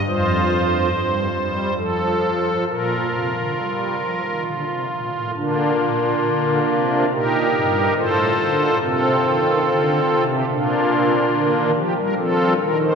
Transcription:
<<
  \new Staff \with { instrumentName = "Pipe organ" } { \time 3/4 \key bes \major \tempo 4 = 70 << { c''2 a'4 | bes'2 r4 | <bes d' f'>2 <ees' g' bes'>4 | <f' a' c''>4 <c' f' a'>4.~ <c' f' a'>16 g'16 |
<bes d' f'>4. g'16 bes'16 <c' f' a'>8 bes'16 c''16 | } \\ { f'4 r2 | f'2. | r2. | r2. |
r2. | } >> }
  \new Staff \with { instrumentName = "Pipe organ" } { \clef bass \time 3/4 \key bes \major f,4 g,8 g8 f4 | bes,8 c16 d16 g8 f16 ees16 d16 c16 bes,16 a,16 | d8 bes,8 d8 c8 bes,8 g,8 | a,8 d8 c8 ees8 d8 c8 |
bes,4 d16 ees16 f16 g16 f8 ees8 | }
>>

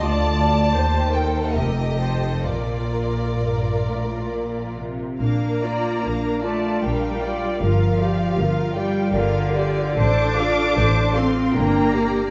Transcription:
<<
  \new Staff \with { instrumentName = "Violin section" } { \time 3/4 \key bes \major \tempo 4 = 75 a''4. g''8 ees''4 | d''2~ d''8 r8 | f''8 d''8 f''8 d''8 f''8 d''8 | f''8 d''8 f''8 d''8 f''8 d''8 |
a''8 f''8 a''8 f''8 g''8 d''8 | }
  \new Staff \with { instrumentName = "Violin section" } { \time 3/4 \key bes \major << { d''4 c''4 bes'8 a'8 | bes'2~ bes'8. r16 | bes''4. a''8 g''4 | f''4. g''8 d''4 |
d'''4. c'''8 bes''4 | } \\ { f'8 f'8 g'8 a'8 g'4 | f'2~ f'8. r16 | r2. | r2. |
r2. | } >> }
  \new Staff \with { instrumentName = "Viola section" } { \time 3/4 \key bes \major d''4 c''8 bes'8 a'8 c''8 | bes'2~ bes'8 r8 | <d' bes'>8 <f' d''>8 <d' bes'>8 <f' d''>8 <d' bes'>8 <f' d''>8 | <f' bes'>8 <f' g'>8 <f' bes'>8 <f' g'>8 <f' bes'>8 <f' g'>8 |
<a' c''>8 <f' a'>8 <a' c''>8 <f' a'>8 <d' bes'>8 g'8 | }
  \new Staff \with { instrumentName = "Cello section" } { \clef bass \time 3/4 \key bes \major d,4 ees,4 f,4 | bes,4 g,8 a,8 bes,8 c8 | bes4. a8 g4 | f4. g8 d4 |
d'4. c'8 bes4 | }
  \new Staff \with { instrumentName = "Double bass section" } { \clef bass \time 3/4 \key bes \major d,4 ees,4 f,,4 | bes,,2~ bes,,8. r16 | bes,,4 bes,,4 bes,,4 | g,,4 g,,4 g,,4 |
a,,4 a,,4 g,,4 | }
>>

